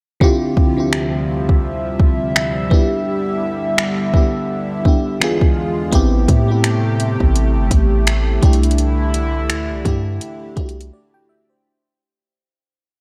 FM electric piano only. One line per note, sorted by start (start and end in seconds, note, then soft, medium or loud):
0.20 0.54 D3 loud
0.20 0.54 C4 medium
0.20 0.54 E4 medium
0.20 0.55 F4 loud
0.20 0.55 G4 loud
0.77 1.61 D3 medium
0.77 1.61 C4 medium
0.77 1.62 E4 medium
0.77 1.62 F4 medium
0.77 1.62 G4 medium
2.70 3.86 B3 medium
2.70 3.87 D4 medium
2.70 3.87 E4 medium
2.70 3.88 G4 medium
4.13 4.58 B3 medium
4.13 4.58 D4 medium
4.13 4.59 E4 medium
4.13 4.60 G4 medium
4.85 5.20 B3 medium
4.85 5.21 D4 medium
4.85 5.22 E4 medium
4.85 5.22 G4 medium
5.20 5.80 E3 medium
5.20 5.81 B3 medium
5.20 5.81 D4 medium
5.20 5.81 F4 medium
5.20 5.82 G#4 loud
5.91 6.25 B3 loud
5.91 6.25 C4 loud
5.91 6.26 E4 loud
5.91 6.27 G4 loud
6.48 7.32 B3 medium
6.48 7.33 C4 medium
6.48 7.33 E4 medium
6.48 7.34 G4 medium
8.41 9.57 A3 medium
8.41 9.58 D4 medium
8.41 9.59 E4 medium
8.41 9.59 G4 medium
9.84 10.29 A3 medium
9.84 10.30 D4 medium
9.84 10.30 E4 medium
9.84 10.31 G4 medium
10.56 11.22 A3 medium
10.56 11.23 D4 medium
10.56 11.23 E4 medium
10.56 10.66 F#4 medium
10.66 11.27 G4 medium
10.93 11.13 D5 medium
11.14 11.28 G5 medium
11.29 11.48 E5 medium
11.50 11.83 C5 medium